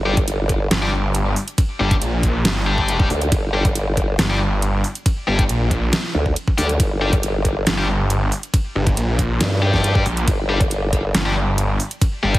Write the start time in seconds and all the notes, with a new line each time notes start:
Already playing: G1
0.06 G3 D4 G4
0.17 kick, closed hi-hat
0.28 closed hi-hat, ride
0.49 kick, closed hi-hat
0.71 G1, snare, closed hi-hat, ride
0.82 G3 D4 G4
1.15 closed hi-hat, ride
1.36 open hi-hat
1.48 closed hi-hat
1.58 kick, closed hi-hat, ride
1.80 G1 G3 D4 G4
1.91 kick, closed hi-hat
2.02 A#1, closed hi-hat, ride
2.23 kick, closed hi-hat
2.45 G1, snare, closed hi-hat, ride
2.66 G3 D4 G4
2.78 kick
2.88 closed hi-hat, ride
3.00 G3 D4 G4, kick
3.10 D2, open hi-hat
3.22 closed hi-hat
3.32 G1, kick, closed hi-hat, ride
3.53 G3 D4 G4
3.65 kick, closed hi-hat
3.75 closed hi-hat, ride
3.97 kick, closed hi-hat
4.19 G1, snare, closed hi-hat, ride
4.30 G3 D4 G4
4.62 closed hi-hat, ride
4.84 open hi-hat
4.95 closed hi-hat
5.06 kick, closed hi-hat, ride
5.27 G1 G3 D4 G4
5.39 kick, closed hi-hat
5.49 A#1, closed hi-hat, ride
5.71 kick, closed hi-hat
5.93 snare, closed hi-hat, ride
6.15 D2
6.26 kick
6.36 closed hi-hat, ride
6.48 kick
6.58 D2 G3 D4 G4, open hi-hat
6.69 closed hi-hat
6.80 G1, kick, closed hi-hat, ride
7.01 G3 D4 G4
7.13 kick, closed hi-hat
7.23 closed hi-hat, ride
7.45 kick, closed hi-hat
7.67 G1, snare, closed hi-hat, ride
7.78 G3 D4 G4
8.10 closed hi-hat, ride
8.32 open hi-hat
8.43 closed hi-hat
8.54 kick, closed hi-hat, ride
8.75 G1
8.87 kick, closed hi-hat
8.97 A#1, closed hi-hat, ride
9.19 kick, closed hi-hat
9.41 G2, snare, closed hi-hat, ride
9.62 G3 D4 G4
9.74 kick, snare
9.84 closed hi-hat, ride
9.95 G3 D4 G4, kick
10.06 A#1, open hi-hat
10.17 closed hi-hat
10.28 G1, kick, closed hi-hat, ride
10.49 G3 D4 G4
10.61 kick, closed hi-hat
10.71 closed hi-hat, ride
10.93 kick, closed hi-hat
11.15 G1, snare, closed hi-hat, ride
11.26 G3 D4 G4
11.58 closed hi-hat, ride
11.80 open hi-hat
11.91 closed hi-hat
12.02 kick, closed hi-hat, ride
12.23 G1 G3 D4 G4
12.35 kick, closed hi-hat